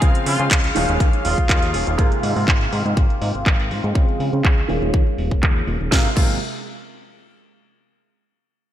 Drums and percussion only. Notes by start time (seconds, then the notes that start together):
0.02 kick, closed hi-hat
0.15 closed hi-hat
0.26 open hi-hat
0.39 closed hi-hat
0.51 kick, clap, closed hi-hat
0.64 closed hi-hat
0.76 open hi-hat
0.89 closed hi-hat
1.00 kick, closed hi-hat
1.13 closed hi-hat
1.25 open hi-hat
1.38 kick, closed hi-hat
1.49 kick, clap, closed hi-hat
1.62 closed hi-hat
1.74 open hi-hat
1.87 closed hi-hat
1.99 kick, closed hi-hat
2.12 closed hi-hat
2.23 open hi-hat
2.36 open hi-hat
2.48 kick, clap, closed hi-hat
2.61 closed hi-hat
2.73 open hi-hat
2.86 closed hi-hat
2.97 kick, closed hi-hat
3.10 closed hi-hat
3.22 open hi-hat
3.35 closed hi-hat
3.46 kick, clap, closed hi-hat
3.60 closed hi-hat
3.71 open hi-hat
3.84 closed hi-hat
3.95 kick, closed hi-hat
4.09 closed hi-hat
4.20 open hi-hat
4.33 closed hi-hat
4.45 kick, clap, closed hi-hat
4.58 closed hi-hat
4.69 open hi-hat
4.82 closed hi-hat
4.94 kick, closed hi-hat
5.07 closed hi-hat
5.18 open hi-hat
5.31 kick
5.43 kick, clap
5.56 closed hi-hat
5.67 open hi-hat
5.81 closed hi-hat
5.92 kick, snare
6.17 kick, crash